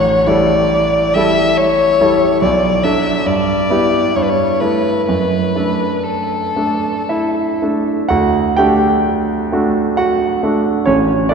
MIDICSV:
0, 0, Header, 1, 3, 480
1, 0, Start_track
1, 0, Key_signature, 2, "major"
1, 0, Tempo, 865801
1, 1336, Time_signature, 3, 2, 24, 8
1, 2299, Tempo, 944882
1, 3259, Tempo, 1077199
1, 3739, Tempo, 977199
1, 4699, Tempo, 898204
1, 5914, End_track
2, 0, Start_track
2, 0, Title_t, "Violin"
2, 0, Program_c, 0, 40
2, 0, Note_on_c, 0, 73, 62
2, 145, Note_on_c, 0, 74, 64
2, 154, Note_off_c, 0, 73, 0
2, 631, Note_on_c, 0, 76, 72
2, 640, Note_off_c, 0, 74, 0
2, 872, Note_on_c, 0, 73, 75
2, 881, Note_off_c, 0, 76, 0
2, 1338, Note_off_c, 0, 73, 0
2, 1344, Note_on_c, 0, 74, 63
2, 1572, Note_on_c, 0, 76, 64
2, 1580, Note_off_c, 0, 74, 0
2, 1809, Note_on_c, 0, 74, 66
2, 1817, Note_off_c, 0, 76, 0
2, 2304, Note_on_c, 0, 73, 57
2, 2312, Note_off_c, 0, 74, 0
2, 2344, Note_on_c, 0, 71, 44
2, 2352, Note_off_c, 0, 73, 0
2, 2373, Note_on_c, 0, 73, 52
2, 2381, Note_off_c, 0, 71, 0
2, 2531, Note_on_c, 0, 71, 48
2, 2538, Note_off_c, 0, 73, 0
2, 2763, Note_off_c, 0, 71, 0
2, 2766, Note_on_c, 0, 71, 51
2, 3259, Note_on_c, 0, 69, 39
2, 3266, Note_off_c, 0, 71, 0
2, 3989, Note_off_c, 0, 69, 0
2, 5914, End_track
3, 0, Start_track
3, 0, Title_t, "Grand piano"
3, 0, Program_c, 1, 0
3, 0, Control_c, 1, 64, 127
3, 0, Note_on_c, 1, 33, 53
3, 137, Note_off_c, 1, 33, 0
3, 149, Note_on_c, 1, 55, 37
3, 150, Note_on_c, 1, 64, 36
3, 152, Note_on_c, 1, 69, 35
3, 608, Note_off_c, 1, 55, 0
3, 609, Note_off_c, 1, 64, 0
3, 610, Note_off_c, 1, 69, 0
3, 639, Note_on_c, 1, 55, 43
3, 641, Note_on_c, 1, 64, 40
3, 643, Note_on_c, 1, 69, 47
3, 1087, Note_off_c, 1, 55, 0
3, 1089, Note_off_c, 1, 64, 0
3, 1089, Note_off_c, 1, 69, 0
3, 1114, Note_on_c, 1, 55, 37
3, 1114, Note_on_c, 1, 64, 37
3, 1116, Note_on_c, 1, 69, 40
3, 1318, Note_off_c, 1, 64, 0
3, 1319, Note_off_c, 1, 55, 0
3, 1320, Note_off_c, 1, 69, 0
3, 1340, Note_on_c, 1, 35, 50
3, 1345, Control_c, 1, 64, 0
3, 1438, Control_c, 1, 64, 127
3, 1564, Note_off_c, 1, 35, 0
3, 1573, Note_on_c, 1, 54, 34
3, 1574, Note_on_c, 1, 62, 35
3, 1577, Note_on_c, 1, 69, 39
3, 1786, Note_off_c, 1, 54, 0
3, 1787, Note_off_c, 1, 62, 0
3, 1788, Note_off_c, 1, 69, 0
3, 1808, Note_on_c, 1, 43, 45
3, 1815, Control_c, 1, 64, 0
3, 1909, Control_c, 1, 64, 127
3, 2042, Note_off_c, 1, 43, 0
3, 2051, Note_on_c, 1, 59, 37
3, 2056, Note_on_c, 1, 64, 40
3, 2057, Note_on_c, 1, 67, 39
3, 2277, Note_off_c, 1, 59, 0
3, 2280, Note_off_c, 1, 64, 0
3, 2280, Note_off_c, 1, 67, 0
3, 2302, Note_on_c, 1, 43, 41
3, 2309, Control_c, 1, 64, 0
3, 2385, Control_c, 1, 64, 127
3, 2527, Note_off_c, 1, 43, 0
3, 2535, Note_on_c, 1, 57, 26
3, 2539, Note_on_c, 1, 64, 29
3, 2539, Note_on_c, 1, 69, 33
3, 2751, Note_off_c, 1, 57, 0
3, 2752, Note_off_c, 1, 69, 0
3, 2753, Note_off_c, 1, 64, 0
3, 2776, Note_on_c, 1, 42, 39
3, 2778, Control_c, 1, 64, 0
3, 2873, Control_c, 1, 64, 127
3, 3006, Note_off_c, 1, 42, 0
3, 3014, Note_on_c, 1, 57, 24
3, 3016, Note_on_c, 1, 62, 27
3, 3019, Note_on_c, 1, 69, 25
3, 3480, Note_off_c, 1, 57, 0
3, 3480, Note_off_c, 1, 62, 0
3, 3482, Note_off_c, 1, 69, 0
3, 3494, Note_on_c, 1, 57, 29
3, 3495, Note_on_c, 1, 62, 29
3, 3498, Note_on_c, 1, 69, 33
3, 3730, Note_on_c, 1, 76, 54
3, 3733, Note_on_c, 1, 64, 40
3, 3968, Note_off_c, 1, 57, 0
3, 3968, Note_off_c, 1, 62, 0
3, 3970, Note_off_c, 1, 69, 0
3, 3988, Note_on_c, 1, 57, 27
3, 3990, Note_on_c, 1, 62, 27
3, 3992, Note_on_c, 1, 69, 29
3, 4204, Note_off_c, 1, 64, 0
3, 4207, Note_off_c, 1, 57, 0
3, 4208, Note_off_c, 1, 62, 0
3, 4208, Note_off_c, 1, 69, 0
3, 4216, Note_on_c, 1, 78, 80
3, 4222, Note_off_c, 1, 76, 0
3, 4222, Note_on_c, 1, 66, 57
3, 4224, Note_on_c, 1, 38, 52
3, 4236, Control_c, 1, 64, 0
3, 4309, Control_c, 1, 64, 127
3, 4443, Note_off_c, 1, 66, 0
3, 4452, Note_on_c, 1, 79, 75
3, 4453, Note_off_c, 1, 38, 0
3, 4457, Note_off_c, 1, 78, 0
3, 4459, Note_on_c, 1, 67, 58
3, 4461, Note_on_c, 1, 62, 39
3, 4462, Note_on_c, 1, 57, 36
3, 4465, Note_on_c, 1, 66, 36
3, 4925, Note_off_c, 1, 62, 0
3, 4926, Note_off_c, 1, 57, 0
3, 4927, Note_off_c, 1, 66, 0
3, 4942, Note_on_c, 1, 57, 41
3, 4947, Note_on_c, 1, 62, 41
3, 4947, Note_on_c, 1, 66, 49
3, 5166, Note_off_c, 1, 67, 0
3, 5179, Note_off_c, 1, 66, 0
3, 5182, Note_on_c, 1, 78, 78
3, 5183, Note_off_c, 1, 79, 0
3, 5187, Note_on_c, 1, 66, 60
3, 5402, Note_off_c, 1, 57, 0
3, 5405, Note_off_c, 1, 62, 0
3, 5427, Note_off_c, 1, 66, 0
3, 5427, Note_on_c, 1, 57, 41
3, 5430, Note_on_c, 1, 62, 38
3, 5435, Note_on_c, 1, 66, 45
3, 5641, Note_off_c, 1, 57, 0
3, 5642, Note_off_c, 1, 62, 0
3, 5645, Note_off_c, 1, 66, 0
3, 5654, Note_on_c, 1, 73, 74
3, 5658, Note_off_c, 1, 78, 0
3, 5660, Note_on_c, 1, 33, 49
3, 5661, Note_on_c, 1, 61, 57
3, 5672, Control_c, 1, 64, 0
3, 5762, Control_c, 1, 64, 127
3, 5880, Note_off_c, 1, 61, 0
3, 5887, Note_on_c, 1, 74, 71
3, 5890, Note_off_c, 1, 33, 0
3, 5894, Note_off_c, 1, 73, 0
3, 5894, Note_on_c, 1, 62, 53
3, 5897, Note_on_c, 1, 57, 40
3, 5914, Note_off_c, 1, 57, 0
3, 5914, Note_off_c, 1, 62, 0
3, 5914, Note_off_c, 1, 74, 0
3, 5914, End_track
0, 0, End_of_file